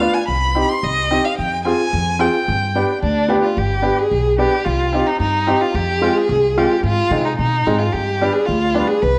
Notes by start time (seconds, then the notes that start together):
Already playing: F5
0.00 B3 D4 F4
0.14 G#5
0.28 C2 B5
0.55 C4 D#4 G4
0.69 C6
0.83 C2 D#5
1.11 C4 D#4 G4
1.25 F5
1.38 F2 G5
1.65 C4 F4 G#4 G#5
1.93 F2
2.19 C4 F4 G#4 G5
2.48 G2
2.75 B3 D4 G4
3.02 D2 D4
3.28 B3 D4 G4
3.43 F4
3.57 G1 G4
3.82 B3 D4 G4
3.99 G#4
4.11 B1
4.38 B3 D4 G4
4.65 C2 F4
4.93 C4 D#4 G4
5.07 D#4
5.20 G2 D#4
5.47 C4 D#4 G4
5.61 F4
5.74 F2 G4
6.01 G#3 C4 F4
6.17 G#4
6.29 C2
6.58 G#3 C4 F4 G4
6.83 G#2 F4
7.11 C3 G#3 C4 D#4
7.25 D#4
7.38 B2 D#4
7.67 G#2 G#3 C4 D#4
7.79 F4
7.92 G2 G4
8.21 G3 B3 D4
8.33 G#4
8.46 D2 F4
8.74 G3 B3 D4
8.88 G#4
9.02 C2 B4